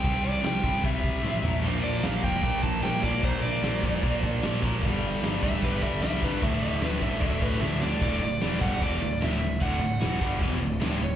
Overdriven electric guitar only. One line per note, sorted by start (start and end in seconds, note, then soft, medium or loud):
0.00 0.23 G5 loud
0.24 0.44 D5 medium
0.46 0.84 G5 medium
0.85 1.62 E5 loud
1.84 2.03 D5 medium
2.03 2.23 F5 medium
2.24 2.62 G5 loud
2.63 2.83 A5 medium
2.83 3.03 G5 loud
3.03 3.22 D5 medium
3.25 3.42 C5 loud
3.43 4.59 D5 medium
5.44 5.62 E5 loud
5.63 5.82 B4 loud
5.82 6.02 E5 loud
6.03 6.22 E5 loud
6.24 6.43 B4 medium
6.43 6.62 E5 medium
6.64 6.82 E5 loud
6.84 7.02 B4 medium
7.02 7.20 E5 medium
7.22 7.41 E5 loud
7.42 7.61 B4 loud
7.60 7.80 E5 medium
7.82 8.01 D5 loud
8.03 8.22 D5 loud
8.23 8.59 D5 medium
8.61 8.82 F#5 loud
8.82 9.23 D5 medium
9.24 9.60 E5 loud
9.62 10.37 F#5 loud
11.04 11.16 C#5 medium